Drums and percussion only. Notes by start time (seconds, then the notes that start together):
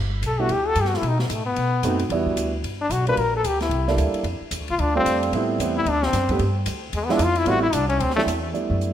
0.23 hi-hat pedal, ride
0.49 ride
0.75 hi-hat pedal, ride
0.85 snare
0.94 snare
1.03 ride
1.19 snare
1.30 hi-hat pedal, ride
1.56 ride
1.83 hi-hat pedal, ride
1.99 ride
2.10 ride
2.27 kick
2.37 hi-hat pedal, ride
2.64 ride
2.90 hi-hat pedal, ride
3.07 ride
3.17 ride
3.44 hi-hat pedal, ride
3.60 snare, ride
3.71 ride
3.88 snare
3.98 hi-hat pedal, ride
4.14 ride
4.24 ride
4.51 hi-hat pedal, ride
4.68 ride
4.79 ride
5.06 hi-hat pedal, ride
5.23 ride
5.33 ride
5.60 hi-hat pedal, ride
5.86 ride
6.03 snare
6.13 snare, hi-hat pedal, ride
6.29 kick, ride
6.39 ride
6.66 hi-hat pedal, ride
6.93 ride
7.09 snare
7.19 hi-hat pedal, ride
7.35 ride
7.46 ride
7.73 hi-hat pedal, ride
7.89 ride
8.00 ride
8.10 snare
8.19 snare
8.28 hi-hat pedal, ride
8.55 closed hi-hat
8.81 closed hi-hat